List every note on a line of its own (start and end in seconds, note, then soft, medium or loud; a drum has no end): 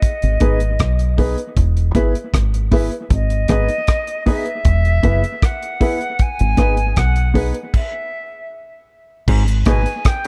0.00 1.39 D#5 medium
0.00 kick loud
0.00 closed hi-hat medium
0.22 0.40 G#1 medium
0.22 closed hi-hat medium
0.40 0.76 G#1 medium
0.40 0.58 B3 medium
0.40 0.58 D#4 medium
0.40 0.59 D#4 medium
0.40 0.59 G#4 medium
0.40 0.59 B4 medium
0.40 kick medium
0.40 closed hi-hat medium
0.60 closed hi-hat medium
0.79 1.34 B1 medium
0.79 kick medium
0.79 cross-stick loud
0.79 closed hi-hat medium
0.99 closed hi-hat medium
1.17 1.36 B3 medium
1.17 1.35 D#4 medium
1.17 1.36 D#4 medium
1.17 1.36 G#4 medium
1.17 1.36 B4 loud
1.17 1.36 B4 medium
1.17 kick medium
1.17 open hi-hat medium
1.38 closed hi-hat soft
1.57 1.92 E1 medium
1.57 kick loud
1.57 closed hi-hat medium
1.77 closed hi-hat soft
1.95 2.13 G#1 medium
1.95 2.13 B3 medium
1.95 2.13 E4 medium
1.95 2.13 G#4 medium
1.95 2.13 B4 loud
1.95 2.13 B4 medium
1.95 kick medium
1.95 closed hi-hat medium
2.15 closed hi-hat medium
2.34 2.88 G#1 medium
2.34 kick loud
2.34 cross-stick loud
2.34 closed hi-hat medium
2.54 closed hi-hat soft
2.71 2.89 B3 medium
2.71 2.90 E4 medium
2.71 2.90 E4 loud
2.71 2.90 G#4 medium
2.71 2.90 B4 loud
2.71 2.90 B4 medium
2.71 kick medium
2.71 open hi-hat medium
2.92 closed hi-hat soft
3.10 3.46 G#1 loud
3.10 4.24 D#5 medium
3.10 kick loud
3.10 closed hi-hat medium
3.30 closed hi-hat medium
3.48 3.68 G#1 medium
3.48 3.67 B3 medium
3.48 3.67 D#4 medium
3.48 3.67 G#4 medium
3.48 3.67 B4 loud
3.48 3.67 B4 medium
3.48 kick medium
3.48 cross-stick medium
3.48 closed hi-hat medium
3.69 closed hi-hat medium
3.87 kick loud
3.87 cross-stick loud
3.87 closed hi-hat medium
4.07 closed hi-hat medium
4.26 4.44 B3 medium
4.26 4.44 D#4 loud
4.26 4.44 G#4 loud
4.26 4.44 G#4 medium
4.26 4.44 B4 medium
4.26 4.45 B4 medium
4.26 5.46 E5 loud
4.26 kick medium
4.26 open hi-hat medium
4.46 closed hi-hat medium
4.65 5.00 E1 loud
4.65 kick loud
4.65 closed hi-hat medium
4.85 closed hi-hat soft
5.03 5.22 F#1 medium
5.03 5.21 B3 medium
5.03 5.21 E4 medium
5.03 5.21 G#4 medium
5.03 5.21 B4 loud
5.03 5.22 B4 loud
5.03 kick medium
5.03 closed hi-hat medium
5.24 closed hi-hat medium
5.42 6.23 F#5 medium
5.42 kick loud
5.42 cross-stick medium
5.42 closed hi-hat medium
5.62 closed hi-hat soft
5.80 5.98 B3 medium
5.80 5.98 E4 medium
5.80 5.98 G#4 loud
5.80 5.99 G#4 medium
5.80 5.99 B4 loud
5.80 5.99 B4 medium
5.80 kick medium
5.80 open hi-hat medium
6.01 closed hi-hat soft
6.19 7.00 G#5 loud
6.19 kick loud
6.19 closed hi-hat medium
6.39 6.57 G#1 medium
6.39 closed hi-hat medium
6.57 6.93 G#1 medium
6.57 6.75 B3 medium
6.57 6.75 D#4 medium
6.57 6.75 G#4 medium
6.57 6.76 G#4 medium
6.57 6.76 B4 medium
6.57 6.76 B4 loud
6.57 kick medium
6.57 cross-stick medium
6.57 closed hi-hat medium
6.77 closed hi-hat soft
6.96 7.51 B1 medium
6.96 7.48 F#5 medium
6.96 kick loud
6.96 cross-stick medium
6.96 closed hi-hat medium
7.16 closed hi-hat medium
7.34 7.52 B3 medium
7.34 7.52 D#4 medium
7.34 7.53 D#4 medium
7.34 7.52 G#4 medium
7.34 7.53 G#4 medium
7.34 7.52 B4 medium
7.34 7.53 B4 loud
7.34 kick medium
7.34 open hi-hat medium
7.55 closed hi-hat medium
7.74 8.48 E5 medium
7.74 kick loud
7.74 crash medium
9.28 9.63 G#1 loud
9.28 9.44 G#2 medium
9.28 kick loud
9.28 crash medium
9.48 closed hi-hat medium
9.66 9.84 G#1 medium
9.66 9.82 B2 medium
9.66 9.84 B3 medium
9.66 9.83 D#4 medium
9.66 9.84 D#4 medium
9.66 9.84 G#4 medium
9.66 9.84 B4 loud
9.66 10.09 G#5 loud
9.66 kick medium
9.66 cross-stick medium
9.66 closed hi-hat medium
9.86 closed hi-hat medium
10.05 10.27 G5 medium
10.05 kick loud
10.05 cross-stick loud
10.05 closed hi-hat medium